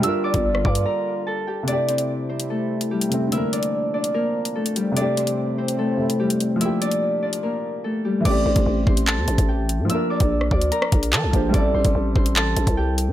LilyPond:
<<
  \new Staff \with { instrumentName = "Harp" } { \time 4/4 \key a \phrygian \tempo 4 = 146 <e'' e'''>8 <d'' d'''>4 <d'' d'''>8 <bes' bes''>4 <a' a''>8 <g' g''>8 | <d' d''>8 <c' c''>4 <c' c''>8 <a a'>4 <g g'>8 r8 | <e' e''>8 <d' d''>4 <d' d''>8 <bes bes'>4 <a a'>8 <g g'>8 | <d' d''>8 <c' c''>4 <c' c''>8 <a a'>4 <g g'>8 r8 |
<e' e''>8 <d' d''>4 <d' d''>8 <bes bes'>4 <a a'>8 <g g'>8 | <d'' d'''>8 <c'' c'''>4 <c'' c'''>8 <a' a''>4 <g' g''>8 r8 | <e'' e'''>8 <d'' d'''>4 <d'' d'''>8 <bes' bes''>4 <a' a''>8 <g' g''>8 | <d'' d'''>8 <c'' c'''>4 <c'' c'''>8 <a' a''>4 <g' g''>8 r8 | }
  \new Staff \with { instrumentName = "Grand piano" } { \time 4/4 \key a \phrygian <g d' f' bes'>1 | <c a g'>2.~ <c a g'>8 <c a c'>8 | <d bes bes'>1 | <c a g'>2~ <c a g'>8 <c a e'>4. |
<f bes g'>1 | <e a c' g'>1 | <f bes d' bes'>2.~ <f bes d' bes'>8 <f bes d' c''>8 | <g c' e' a'>1 | }
  \new Staff \with { instrumentName = "French horn section" } { \clef bass \time 4/4 \key a \phrygian << { <d g f'>1 | <c g e'>1 | <bes, f d'>1 | <a, e c'>1 |
<bes, f d'>1 | r1 | r1 | r1 | } \\ { bes1 | c'1~ | c'1 | g1~ |
g1 | r1 | r1 | r1 | } >> }
  \new Staff \with { instrumentName = "808-style bass" } { \clef bass \time 4/4 \key a \phrygian r8. g,,8. g,8 r2 | r1 | r1 | r1 |
r1 | a,,8 a,,16 a,,16 a,,8 a,,8. e,16 a,,16 a,,4 a,16 | r8. bes,,8. d,8 r8 bes,,8 f16 bes,,16 bes,,8 | a,,8 a,,16 a,,16 a,,8 a,,4 a,,16 c,4 c16 | }
  \new DrumStaff \with { instrumentName = "Drums" } \drummode { \time 4/4 hh8. <hh bd>16 r16 ss16 bd16 hh16 r4 r4 | hh8 hh16 hh16 r8. hh16 r8. hh16 r16 hh16 hh8 | hh8 hh16 hh16 r8. hh16 r8. hh16 r16 hh16 hh8 | hh8 hh16 hh16 r8. hh16 r8. hh16 r16 hh16 hh8 |
hh8 hh16 hh16 r8. hh16 r4 r4 | <cymc hh bd>8. <hh bd>16 r8 bd16 hh16 <hc hh>8 hh16 <hh bd>16 r8 hh8 | hh8. <hh bd>16 r16 ss16 bd16 hh16 hh16 ss16 <hh bd>16 hh16 <hc hh>8 <hh bd>8 | <hh bd>8. <hh bd>16 r8 bd16 hh16 <hc hh>8 hh16 <hh bd>16 r8 hh8 | }
>>